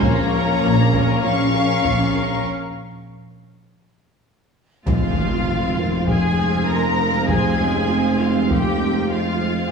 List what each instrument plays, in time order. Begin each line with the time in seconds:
0.02 double bass section A#1, tuba A#1, trombone section A#2 A#3, analog synth pad F3 A#3 C#4 C#5, cello section A#3, synth pluck A#3, viola section A#3 F4, french horn section F4, violin section C#5 A#5, taiko
0.33 viola section C#4 A#4, synth pluck A#4
0.63 double bass section A#1, tuba A#1, viola section A#3 F4, synth pluck A#4
0.93 synth pluck A#3, viola section C#4 A#4, taiko
1.23 double bass section A#1, tuba A#1, viola section A#3 F4, cello section C#4, synth pluck F4, violin section F5 C#6
1.53 viola section C#4 A#4, synth pluck A#4
1.84 double bass section A#1, tuba A#1, viola section A#3 F4, synth pluck A#3, taiko
2.14 viola section C#4 A#4, synth pluck A#4
4.86 tuba F1, double bass section F1, synth pluck F3, viola section G#3 C4, french horn section G#3, analog synth pad G#3 F4 C5, cello section F4, violin section F5, taiko, impact
5.17 synth pluck G#3, french horn section A#3
5.48 french horn section C4, synth pluck F4
5.78 french horn section A#3, synth pluck F4
6.08 synth pluck F3, french horn section G#3, cello section G#4, violin section G#5, taiko
6.38 synth pluck C4, french horn section C4
6.68 french horn section A#3, cello section A#4, violin section A#5
6.99 synth pluck G#3, french horn section G#3
7.28 synth pluck F3, french horn section C4, cello section G#4, violin section G#5, taiko
7.59 french horn section C#3, synth pluck G#3
7.89 french horn section C4, synth pluck F4
8.19 cello section F4, synth pluck F4, violin section F5
8.48 synth pluck F3, french horn section A#3, cello section G4, violin section G5, taiko
8.81 synth pluck C4
9.10 french horn section G#3, cello section F4, violin section F5
9.42 synth pluck G#3